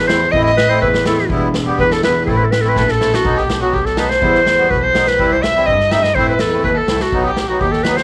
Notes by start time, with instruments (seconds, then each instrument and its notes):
Already playing: double bass E2
0.06 accordion A3 C4 E4, violin C5, clarinet C5, snare
0.31 double bass A1, accordion A3 C4 E4, violin D#5, clarinet D#5, kick
0.44 clarinet D#5, violin D#5, snare
0.57 clarinet B4, snare
0.69 accordion A3 C4 E4, clarinet C5
0.82 double bass E2, clarinet B4, violin B4, kick
0.94 snare
1.06 accordion A3 C4 E4, clarinet A4, snare
1.18 snare
1.30 double bass E1, accordion G3 B3 E4, kick
1.54 snare
1.66 accordion G3 B3 G4
1.79 double bass E2, violin B4, clarinet B4, kick
1.91 violin A4, clarinet A4, snare
2.02 accordion G3 B3 E4, violin B4, clarinet B4, snare
2.26 double bass A1, accordion A3 C4 E4, clarinet A4, kick
2.37 clarinet B4
2.44 clarinet A4
2.51 clarinet B4, snare
2.61 accordion A3 C4 E4, clarinet A4, snare
2.69 clarinet B4
2.76 double bass A#1, violin A4, clarinet B4, kick, snare
2.88 violin A4, clarinet A4, snare
2.99 accordion A3 C4 E4, snare
3.14 clarinet F#4, snare
3.23 double bass B1, accordion F#3 B3 D#4, kick
3.37 violin G4, clarinet G4, snare
3.50 snare
3.60 accordion F#3 B3 F#4, violin F#4, clarinet F#4
3.72 double bass B1, violin G4, clarinet G4, kick
3.84 violin A4, clarinet A4, snare
3.97 accordion F#3 B3 D#4, clarinet B4, snare
4.09 violin C5, clarinet C5, snare
4.21 double bass E2, accordion G3 B3 E4, kick
4.35 snare
4.47 snare
4.58 accordion G3 B3 F#4
4.69 double bass B1, violin B4, clarinet B4, kick
4.82 violin C5, clarinet C5
4.93 accordion G3 B3 D#4, snare
5.07 clarinet B4, snare
5.18 double bass C2, accordion G3 C4 E4, kick
5.32 violin C5, clarinet C5
5.43 clarinet E5, violin E5, snare
5.55 accordion G3 C4 E4
5.66 double bass G2, clarinet D#5, violin D#5, kick
5.80 snare
5.90 accordion G3 C4 D#4, violin E5, clarinet E5, snare
6.03 clarinet D#5, snare
6.15 double bass A1, accordion A3 C4 E4, violin C5, clarinet C5, kick
6.27 violin B4, clarinet B4
6.39 double bass E2, clarinet A4, snare
6.53 accordion A3 C4 E4
6.63 double bass D#2, violin B4, clarinet B4, kick
6.75 violin A4, clarinet A4
6.88 double bass C2, accordion A3 C4 E4, snare
7.00 clarinet F#4, snare
7.12 double bass B1, accordion F#3 B3 D#4, kick
7.25 violin G4, clarinet G4
7.37 snare
7.48 accordion F#3 B3 D#4, violin F#4, clarinet F#4
7.61 double bass D#2, clarinet G4, violin G4, kick
7.72 clarinet A4, snare
7.83 accordion F#3 B3 D#4, clarinet B4, violin B4, snare
7.96 clarinet C5, violin C5, snare